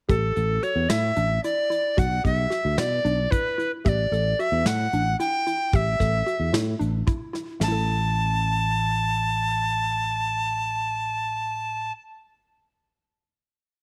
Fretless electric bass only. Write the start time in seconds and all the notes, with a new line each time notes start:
0.10 A1
0.37 A1
0.75 E2
0.89 A2
1.17 A1
1.98 B1
2.25 B1
2.65 D2
2.78 B2
3.05 B1
3.86 A1
4.11 A1
4.52 E2
4.65 A2
4.93 A1
5.73 A1
6.00 A1
6.39 E2
6.53 A2
6.80 A1
7.61 A1